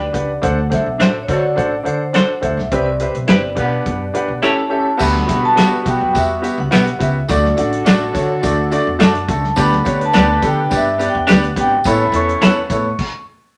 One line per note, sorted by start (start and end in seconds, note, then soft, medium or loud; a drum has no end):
0.00 0.46 D5 medium
0.13 0.35 C#2 medium
0.13 0.29 D4 medium
0.13 0.29 G4 medium
0.13 0.29 B4 medium
0.13 0.29 F#5 medium
0.13 kick medium
0.13 closed hi-hat medium
0.42 0.75 D2 loud
0.42 1.25 D3 medium
0.42 0.57 D4 medium
0.42 0.57 A4 medium
0.42 0.58 C5 medium
0.42 0.58 F#5 loud
0.42 0.74 F#5 loud
0.42 kick medium
0.42 closed hi-hat medium
0.70 0.86 D4 medium
0.70 0.86 A4 medium
0.70 0.86 C5 medium
0.70 0.99 E5 medium
0.70 0.86 F#5 medium
0.70 kick loud
0.70 snare soft
0.70 closed hi-hat medium
0.86 0.97 B1 medium
0.98 1.21 A1 medium
0.98 1.14 D4 medium
0.98 1.10 D4 medium
0.98 1.10 F#4 medium
0.98 1.15 A4 medium
0.98 1.15 C5 medium
0.98 1.11 C5 medium
0.98 1.15 E5 medium
0.98 1.23 E5 medium
0.98 snare loud
0.98 closed hi-hat medium
1.23 1.30 C#5 medium
1.28 1.50 D3 medium
1.28 1.43 D4 medium
1.28 1.70 D4 medium
1.28 1.70 F#4 medium
1.28 1.43 A4 medium
1.28 1.70 A4 medium
1.28 1.44 C5 medium
1.28 1.76 D5 medium
1.28 1.44 F#5 medium
1.28 kick medium
1.28 closed hi-hat medium
1.56 1.79 A1 medium
1.56 1.72 D4 medium
1.56 1.72 A4 medium
1.56 1.72 C5 medium
1.56 1.72 F#5 medium
1.56 kick medium
1.56 closed hi-hat medium
1.80 2.00 D4 medium
1.80 2.00 A4 medium
1.80 1.87 D5 medium
1.85 2.17 D3 medium
1.85 2.00 C5 medium
1.85 2.40 C5 medium
1.85 2.01 F#5 medium
1.85 closed hi-hat medium
2.13 2.29 D4 medium
2.13 2.24 D4 medium
2.13 2.25 F#4 medium
2.13 2.29 A4 medium
2.13 2.29 C5 medium
2.13 2.25 C5 medium
2.13 2.30 F#5 medium
2.13 snare medium
2.13 closed hi-hat medium
2.41 2.54 D2 medium
2.41 2.57 D4 medium
2.41 2.57 A4 medium
2.41 2.57 C5 medium
2.41 2.73 E5 medium
2.41 2.58 F#5 medium
2.41 kick medium
2.41 closed hi-hat medium
2.57 2.68 B1 medium
2.57 snare soft
2.72 3.03 C2 loud
2.72 3.54 C3 medium
2.72 2.87 C4 medium
2.72 2.87 G4 medium
2.72 2.87 B4 medium
2.72 3.02 D5 medium
2.72 2.87 E5 loud
2.72 kick medium
2.72 closed hi-hat medium
2.99 3.15 C4 medium
2.99 3.15 G4 medium
2.99 3.15 B4 medium
2.99 3.15 C5 medium
2.99 3.16 E5 medium
2.99 closed hi-hat medium
3.15 3.25 B1 medium
3.15 closed hi-hat soft
3.27 3.50 G1 medium
3.27 3.43 C4 medium
3.27 3.38 E4 medium
3.27 3.43 G4 medium
3.27 3.39 G4 medium
3.27 3.44 B4 medium
3.27 3.39 B4 medium
3.27 3.44 E5 medium
3.27 snare loud
3.27 closed hi-hat medium
3.32 4.41 D5 medium
3.55 4.39 B2 medium
3.55 3.78 B2 medium
3.55 3.98 B3 medium
3.55 4.02 D4 medium
3.55 4.03 G4 medium
3.55 3.98 G4 medium
3.55 4.03 B4 medium
3.55 3.99 B4 medium
3.55 3.64 F5 medium
3.55 kick medium
3.55 closed hi-hat medium
3.63 4.06 F#5 medium
3.86 4.07 F#2 medium
3.86 kick medium
3.86 closed hi-hat medium
4.14 4.29 D4 medium
4.14 4.29 G4 medium
4.14 4.30 B4 medium
4.14 4.30 F#5 medium
4.14 muted upright bass stroke soft
4.14 closed hi-hat medium
4.28 4.39 B1 medium
4.42 4.97 A2 medium
4.42 4.58 C#4 medium
4.42 4.53 E4 medium
4.42 4.58 G4 medium
4.42 4.53 G4 medium
4.42 4.58 A4 medium
4.42 4.53 C#5 medium
4.42 4.58 E5 loud
4.47 5.04 A5 medium
4.69 4.85 C#4 medium
4.69 4.86 G4 medium
4.69 4.86 A4 medium
4.69 4.86 E5 medium
4.97 5.21 D2 medium
4.97 5.81 D3 medium
4.97 6.96 G3 medium
4.97 5.14 B3 medium
4.97 6.96 B3 medium
4.97 5.14 F#4 medium
4.97 6.96 F#4 medium
4.97 5.14 G4 medium
4.97 5.15 E5 loud
4.97 kick loud
4.97 crash medium
4.97 tambourine loud
5.02 5.41 B5 loud
5.16 snare soft
5.27 5.60 B1 medium
5.27 5.43 B3 medium
5.27 5.43 F#4 medium
5.27 5.43 G4 medium
5.27 5.44 E5 medium
5.27 kick medium
5.27 snare soft
5.27 closed hi-hat medium
5.27 tambourine medium
5.45 5.89 A5 loud
5.56 5.67 G3 medium
5.56 5.72 B3 medium
5.56 5.67 B3 medium
5.56 5.72 F#4 medium
5.56 5.68 F#4 medium
5.56 5.72 G4 medium
5.56 5.72 E5 loud
5.56 snare loud
5.56 closed hi-hat loud
5.56 tambourine loud
5.85 5.97 B1 medium
5.85 6.01 B3 medium
5.85 6.01 F#4 medium
5.85 6.01 G4 medium
5.85 6.01 E5 medium
5.85 kick medium
5.85 closed hi-hat medium
5.85 tambourine medium
5.90 6.18 G5 medium
6.01 6.11 F#2 medium
6.13 6.47 E2 medium
6.13 6.29 B3 medium
6.13 6.29 F#4 medium
6.13 6.29 G4 medium
6.13 6.30 E5 medium
6.13 kick medium
6.13 closed hi-hat medium
6.13 tambourine medium
6.17 6.56 E5 loud
6.42 6.57 B3 medium
6.42 6.57 F#4 medium
6.42 6.58 G4 medium
6.42 6.58 E5 medium
6.42 closed hi-hat medium
6.42 tambourine medium
6.58 6.68 C#2 medium
6.58 7.03 F#5 loud
6.71 6.94 B1 medium
6.71 6.82 G3 medium
6.71 6.86 B3 loud
6.71 6.82 B3 medium
6.71 6.86 F#4 medium
6.71 6.82 F#4 medium
6.71 6.87 G4 medium
6.71 6.87 E5 loud
6.71 snare loud
6.71 closed hi-hat medium
6.71 tambourine loud
6.87 closed hi-hat soft
6.99 7.21 C#2 medium
6.99 7.14 B3 medium
6.99 7.15 F#4 medium
6.99 7.15 G4 medium
6.99 7.15 E5 medium
6.99 7.28 E5 medium
6.99 kick loud
6.99 closed hi-hat medium
6.99 tambourine soft
7.28 7.50 D2 loud
7.28 8.11 D3 medium
7.28 7.43 A3 loud
7.28 7.44 D4 medium
7.28 9.26 D4 medium
7.28 7.44 F#4 medium
7.28 9.26 F#4 medium
7.28 9.25 A4 medium
7.28 7.56 D5 medium
7.28 7.44 D5 loud
7.28 kick loud
7.28 closed hi-hat medium
7.28 tambourine loud
7.45 snare soft
7.56 7.80 A1 medium
7.56 7.72 A3 medium
7.56 7.72 D4 medium
7.56 7.72 F#4 medium
7.56 7.72 D5 medium
7.56 8.68 F#5 medium
7.56 closed hi-hat medium
7.56 tambourine medium
7.72 closed hi-hat medium
7.85 8.00 A3 medium
7.85 7.96 A3 medium
7.85 8.00 D4 medium
7.85 7.96 D4 medium
7.85 8.01 F#4 medium
7.85 7.97 F#4 medium
7.85 8.01 D5 loud
7.85 snare loud
7.85 closed hi-hat loud
7.85 tambourine loud
7.89 8.09 A1 loud
8.13 8.36 D3 medium
8.13 8.28 A3 medium
8.13 8.29 D4 medium
8.13 8.29 F#4 medium
8.13 8.29 C#5 medium
8.13 kick loud
8.13 closed hi-hat medium
8.13 tambourine medium
8.42 8.75 D2 loud
8.42 8.57 A3 medium
8.42 8.58 D4 medium
8.42 8.58 F#4 medium
8.42 8.58 D5 medium
8.42 kick medium
8.42 closed hi-hat medium
8.42 tambourine loud
8.71 8.86 A3 medium
8.71 8.86 D4 medium
8.71 8.86 F#4 medium
8.71 8.87 D5 loud
8.71 closed hi-hat medium
8.71 tambourine medium
8.87 8.97 E2 medium
8.99 9.22 F#2 medium
8.99 9.14 A3 medium
8.99 9.10 A3 medium
8.99 9.14 D4 medium
8.99 9.10 D4 medium
8.99 9.14 F#4 loud
8.99 9.10 F#4 medium
8.99 9.15 D5 loud
8.99 snare loud
8.99 closed hi-hat medium
8.99 tambourine loud
9.03 9.61 A5 medium
9.15 closed hi-hat medium
9.28 9.49 C#2 loud
9.28 9.43 A3 medium
9.28 9.43 D4 medium
9.28 9.43 F#4 medium
9.28 9.44 A4 medium
9.28 kick loud
9.28 closed hi-hat medium
9.28 tambourine soft
9.44 snare soft
9.56 9.78 D2 loud
9.56 10.38 D3 medium
9.56 9.71 B3 loud
9.56 9.71 D4 medium
9.56 11.53 D4 medium
9.56 9.72 G4 medium
9.56 11.53 G4 medium
9.56 11.53 B4 medium
9.56 9.72 D5 loud
9.56 kick loud
9.56 closed hi-hat medium
9.56 tambourine loud
9.62 9.99 B5 medium
9.72 snare soft
9.84 10.07 D2 medium
9.84 10.00 B3 medium
9.84 10.00 D4 medium
9.84 10.00 G4 medium
9.84 10.00 C#5 medium
9.84 kick loud
9.84 closed hi-hat medium
9.84 tambourine medium
10.01 closed hi-hat soft
10.05 10.47 A5 medium
10.13 10.36 D2 loud
10.13 10.28 B3 medium
10.13 10.29 D4 medium
10.13 10.23 D4 medium
10.13 10.29 G4 medium
10.13 10.24 G4 medium
10.13 10.24 B4 medium
10.13 10.29 D5 loud
10.13 snare loud
10.13 closed hi-hat loud
10.13 tambourine medium
10.41 10.63 D3 loud
10.41 10.57 B3 medium
10.41 10.57 D4 medium
10.41 10.57 G4 medium
10.41 10.58 A4 medium
10.41 kick loud
10.41 closed hi-hat medium
10.41 tambourine medium
10.47 10.74 G5 medium
10.70 11.03 G2 medium
10.70 10.85 B3 medium
10.70 10.86 D4 medium
10.70 10.86 G4 medium
10.70 10.86 D5 medium
10.70 kick loud
10.70 closed hi-hat medium
10.70 tambourine loud
10.77 11.11 E5 medium
10.98 11.14 B3 medium
10.98 11.14 D4 medium
10.98 11.14 G4 medium
10.98 11.14 D5 medium
10.98 closed hi-hat medium
10.98 tambourine medium
11.09 11.15 G5 medium
11.15 11.25 E2 loud
11.15 11.60 F#5 medium
11.27 11.49 D2 loud
11.27 11.43 B3 loud
11.27 11.37 D4 medium
11.27 11.43 D4 medium
11.27 11.38 G4 medium
11.27 11.43 G4 medium
11.27 11.38 B4 medium
11.27 11.43 D5 loud
11.27 snare loud
11.27 closed hi-hat medium
11.27 tambourine loud
11.44 closed hi-hat medium
11.56 11.78 G#1 loud
11.56 11.71 B3 medium
11.56 11.71 D4 medium
11.56 11.71 G4 medium
11.56 11.72 D5 medium
11.56 kick loud
11.56 closed hi-hat loud
11.56 tambourine soft
11.60 11.88 G5 loud
11.84 12.06 A1 loud
11.84 12.67 A2 medium
11.84 12.00 B3 loud
11.84 12.68 C#4 medium
11.84 12.69 E4 medium
11.84 12.01 E4 loud
11.84 12.68 A4 medium
11.84 12.01 A4 loud
11.84 12.01 C#5 loud
11.84 12.13 B5 loud
11.84 kick loud
11.84 closed hi-hat medium
11.84 tambourine loud
12.12 12.33 E2 medium
12.12 12.28 B3 medium
12.12 12.28 E4 medium
12.12 12.29 A4 medium
12.12 12.29 C#5 medium
12.12 13.24 C#6 loud
12.12 closed hi-hat medium
12.12 tambourine medium
12.29 closed hi-hat soft
12.41 12.62 E2 loud
12.41 12.56 B3 loud
12.41 12.51 C#4 medium
12.41 12.57 E4 medium
12.41 12.51 E4 loud
12.41 12.57 A4 medium
12.41 12.52 B4 loud
12.41 12.57 C#5 loud
12.41 snare loud
12.41 closed hi-hat loud
12.41 tambourine loud
12.70 12.91 A2 medium
12.70 12.85 B3 medium
12.70 12.85 E4 medium
12.70 12.85 A4 medium
12.70 12.85 C#5 medium
12.70 kick medium
12.70 closed hi-hat medium
12.70 tambourine medium
12.99 kick loud
12.99 crash medium